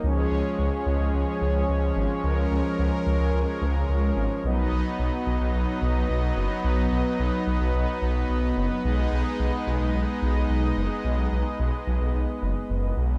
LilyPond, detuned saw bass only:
\new Staff \with { instrumentName = "Detuned saw bass" } { \clef bass \time 4/4 \key ces \lydian \tempo 4 = 109 des,8 des,16 r16 des,16 r16 des,16 des,16 des,16 r16 des,8 des,8 aes,,16 r16 | des,8 des,16 r16 des,16 r16 des,16 des,16 des,16 r16 des,8 des,8 aes,,16 r16 | b,,8 b,,16 r16 b,,16 r16 b,,16 b,,16 b,,16 r16 b,,8 b,,8 fis,,16 r16 | b,,8 b,,16 r16 b,,16 r16 b,,16 b,,16 b,,16 r16 b,,8 b,,8 fis,,16 r16 |
ces,8 ces,16 r16 ces,16 r16 ces,16 ces,16 ces,16 r16 ces,8 ces,8 ges,,16 r16 | ces,8 ces,16 r16 ces,16 r16 ces,16 ces,16 ces,16 r16 ges,,16 r16 ges,,8 ces,8 | }